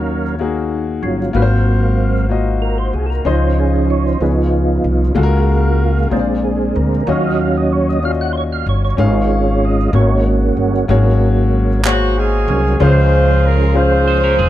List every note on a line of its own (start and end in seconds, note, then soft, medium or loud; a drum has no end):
0.00 0.99 D#2 loud
0.00 0.35 D#3 medium
0.00 0.35 F#3 soft
0.00 0.22 A#3 medium
0.00 0.35 C#4 soft
0.00 0.22 D#4 medium
0.00 0.23 F#4 medium
0.00 0.35 A#4 medium
0.00 0.23 C#5 medium
0.00 0.35 F5 medium
0.39 1.18 A#3 medium
0.39 1.18 D#4 medium
0.39 1.18 F#4 medium
0.39 1.19 G#4 medium
1.03 1.32 G1 medium
1.03 1.31 F#3 soft
1.03 1.31 C#4 soft
1.03 1.32 F4 soft
1.33 2.90 G#1 medium
1.33 2.26 G#2 medium
1.33 2.26 F#3 soft
1.33 2.13 A#3 medium
1.33 2.26 A#3 soft
1.33 2.27 C4 soft
1.33 2.13 F4 medium
1.33 2.13 F#4 medium
1.33 1.42 B4 medium
1.33 2.27 F5 medium
1.42 2.17 C5 medium
2.29 3.08 A#3 medium
2.29 3.09 F4 medium
2.29 3.09 F#4 medium
2.29 3.09 D#5 medium
2.62 2.78 A#4 medium
2.78 2.94 C5 medium
2.93 3.23 C2 medium
2.93 3.06 G#4 medium
3.06 3.10 A4 medium
3.06 3.26 A#4 medium
3.24 4.17 C#2 medium
3.24 4.17 C#3 medium
3.24 4.17 F3 soft
3.24 4.04 C#4 medium
3.24 4.18 C#4 soft
3.24 3.32 D#4 medium
3.24 4.18 D#4 medium
3.24 4.04 C5 medium
3.24 3.59 C5 medium
3.24 4.05 D#5 medium
3.32 4.07 F4 medium
3.59 3.88 G#4 medium
3.90 4.06 C#5 loud
4.07 4.22 C5 medium
4.20 4.80 C#2 medium
4.20 5.13 F3 medium
4.20 4.99 B3 medium
4.20 5.13 B3 medium
4.20 5.13 C#4 medium
4.20 5.13 D#4 medium
4.20 5.00 F4 medium
4.20 5.00 G#4 medium
4.20 4.36 G#4 medium
4.20 4.28 B4 medium
4.29 5.03 C#5 medium
4.38 5.93 F4 medium
4.84 5.14 C2 medium
5.15 6.07 C#2 loud
5.15 6.08 C#3 medium
5.15 5.94 G#3 medium
5.15 6.07 G#3 soft
5.15 6.07 A#3 soft
5.15 5.95 F4 medium
5.15 5.95 F#4 medium
5.15 5.23 A4 medium
5.15 6.08 F5 medium
5.23 5.99 A#4 loud
6.10 6.71 A#1 medium
6.10 7.03 A#2 medium
6.10 7.03 G#3 medium
6.10 6.90 A#3 medium
6.10 7.04 C4 medium
6.10 7.04 D4 medium
6.10 6.90 F4 medium
6.10 6.90 G#4 medium
6.10 6.19 C5 medium
6.19 6.94 D5 medium
6.44 6.77 G#4 medium
6.76 7.05 D2 medium
6.76 7.09 A#4 medium
7.07 8.62 D#2 loud
7.07 7.99 D#3 medium
7.07 7.99 F#3 soft
7.07 7.86 C#4 medium
7.07 7.99 C#4 soft
7.07 7.86 F4 medium
7.07 7.87 F#4 medium
7.07 7.23 C#5 medium
7.07 7.87 D#5 medium
7.07 7.40 F5 medium
7.24 7.40 D#5 medium
7.41 7.56 F5 medium
7.57 7.73 D#5 medium
7.73 7.88 C#5 medium
7.89 8.04 D#5 medium
8.02 8.81 C#4 medium
8.02 8.82 F4 medium
8.02 8.82 F#4 medium
8.02 8.10 D5 medium
8.02 8.12 F5 loud
8.10 8.85 D#5 medium
8.21 8.32 F#5 loud
8.33 8.36 C5 medium
8.37 8.44 C#5 medium
8.53 8.68 F5 medium
8.66 8.96 G1 medium
8.66 8.83 C#5 medium
8.85 9.65 C#5 medium
8.97 9.90 G#1 medium
8.97 9.90 G#2 medium
8.97 9.90 G#3 soft
8.97 9.76 C#4 medium
8.97 9.91 C#4 soft
8.97 9.77 F4 medium
8.97 9.91 F4 medium
8.97 9.77 G#4 medium
8.97 9.78 F5 medium
9.65 9.87 D#5 medium
9.88 9.94 D#5 medium
9.92 10.53 G#1 loud
9.92 10.85 G#3 medium
9.92 10.72 A#3 medium
9.92 10.85 A#3 medium
9.92 10.86 C#4 medium
9.92 10.72 F#4 medium
9.92 10.86 F#4 medium
9.92 10.73 G#4 medium
9.92 10.73 C#5 medium
9.92 10.24 C#5 medium
10.57 10.86 G1 medium
10.88 12.44 G#1 loud
10.88 11.81 G#2 medium
10.88 11.81 F#3 soft
10.88 11.67 A#3 medium
10.88 11.81 A#3 soft
10.88 11.82 C#4 medium
10.88 11.68 F#4 medium
10.88 11.68 G#4 medium
10.88 11.69 C#5 loud
11.84 12.63 A#3 medium
11.84 12.64 F#4 medium
11.84 12.15 F#4 medium
11.84 12.64 G#4 medium
11.84 11.92 C5 medium
11.84 clap medium
11.93 12.67 C#5 medium
12.18 12.77 C#4 medium
12.18 12.77 D#4 medium
12.18 12.81 G#4 loud
12.48 12.77 C2 medium
12.48 12.77 F#3 soft
12.48 12.77 A#3 soft
12.48 12.78 C#4 medium
12.80 14.35 C#2 loud
12.80 13.72 C#3 medium
12.80 14.49 F3 medium
12.80 14.49 G#3 soft
12.80 13.59 C#4 medium
12.80 14.49 C#4 medium
12.80 13.59 F4 medium
12.80 13.72 F4 medium
12.80 14.49 G#4 medium
12.80 13.59 G#4 medium
12.80 13.72 G#4 medium
12.80 14.49 C5 medium
12.80 13.59 C5 medium
12.80 13.45 C5 loud
12.80 13.60 F5 medium
13.46 13.76 A#4 loud
13.74 14.49 C#4 medium
13.74 14.49 F4 medium
13.74 14.49 G#4 medium
13.74 14.49 C5 medium
13.74 14.49 C5 loud
13.74 14.49 F5 medium
14.08 14.23 D#4 medium
14.08 14.22 C5 medium
14.23 14.38 C#4 medium
14.23 14.38 A#4 medium
14.38 14.49 E1 medium
14.38 14.49 C4 medium
14.38 14.49 G#4 medium